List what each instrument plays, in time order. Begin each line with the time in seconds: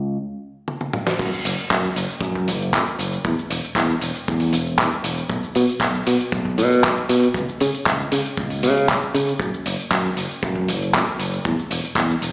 Already playing: fingered electric bass C#2
0.68 high tom
0.81 high tom
0.93 mid tom
1.07 snare
1.19 fingered electric bass F#2, kick, crash, shaker
1.33 shaker
1.45 fingered electric bass F#1, open hi-hat, shaker
1.58 shaker
1.70 fingered electric bass F#2, kick, clap, shaker
1.84 shaker
1.96 fingered electric bass F#1, open hi-hat, shaker
2.10 shaker
2.21 fingered electric bass F#2, kick, shaker
2.35 kick
2.48 fingered electric bass F#1, open hi-hat, shaker
2.61 shaker
2.73 fingered electric bass F#2, kick, clap, shaker
2.87 shaker
2.99 fingered electric bass F#1, open hi-hat, shaker
3.13 shaker
3.25 fingered electric bass E2, kick, shaker
3.38 shaker
3.50 fingered electric bass E1, open hi-hat, shaker
3.63 muted fingered electric bass stroke, shaker
3.75 fingered electric bass E2, kick, clap, shaker
3.90 shaker
4.01 fingered electric bass E1, open hi-hat, shaker
4.15 shaker
4.28 fingered electric bass E2, kick, shaker
4.40 open hi-hat
4.53 fingered electric bass E1, open hi-hat, shaker
4.66 shaker
4.78 fingered electric bass E2, kick, clap, shaker
4.92 shaker
5.04 fingered electric bass E1, open hi-hat, shaker
5.17 shaker
5.29 fingered electric bass B1, kick, shaker
5.43 shaker
5.55 fingered electric bass B2, open hi-hat, shaker
5.69 shaker
5.80 fingered electric bass B1, kick, clap, shaker
5.94 shaker
6.07 fingered electric bass B2, open hi-hat, shaker
6.20 shaker
6.32 fingered electric bass B1, kick, shaker
6.45 kick
6.58 fingered electric bass B2, open hi-hat, shaker
6.72 shaker
6.84 fingered electric bass B1, kick, clap, shaker
6.97 shaker
7.09 fingered electric bass B2, open hi-hat, shaker
7.23 shaker
7.34 fingered electric bass C#2, kick, shaker
7.49 shaker
7.60 fingered electric bass C#3, open hi-hat, shaker
7.74 muted fingered electric bass stroke, shaker
7.86 fingered electric bass C#2, kick, clap, shaker
8.00 shaker
8.12 fingered electric bass C#3, open hi-hat, shaker
8.25 shaker
8.37 fingered electric bass C#2, kick, shaker
8.50 open hi-hat
8.63 fingered electric bass C#3, open hi-hat, shaker
8.77 shaker
8.89 fingered electric bass C#2, kick, clap, shaker
9.02 shaker
9.14 fingered electric bass C#3, open hi-hat, shaker
9.28 shaker
9.40 fingered electric bass F#2, kick, shaker
9.54 shaker
9.66 fingered electric bass F#1, open hi-hat, shaker
9.79 shaker
9.91 fingered electric bass F#2, kick, clap, shaker
10.05 shaker
10.17 fingered electric bass F#1, open hi-hat, shaker
10.30 shaker
10.43 fingered electric bass F#2, kick, shaker
10.56 kick
10.68 fingered electric bass F#1, open hi-hat, shaker
10.82 shaker
10.94 fingered electric bass F#2, kick, clap, shaker
11.07 shaker
11.19 fingered electric bass F#1, open hi-hat, shaker
11.33 shaker
11.45 fingered electric bass E2, kick, shaker
11.59 shaker
11.71 fingered electric bass E1, open hi-hat, shaker
11.84 muted fingered electric bass stroke, shaker
11.95 fingered electric bass E2, kick, clap, shaker
12.10 shaker
12.22 fingered electric bass E1, open hi-hat, shaker